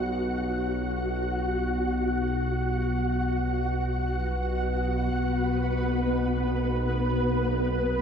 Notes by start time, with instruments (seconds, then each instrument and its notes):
Already playing: synth drone B1 B2, synth texture F#4 F#5
5.08 synth drone B1 B2, synth texture B3 B4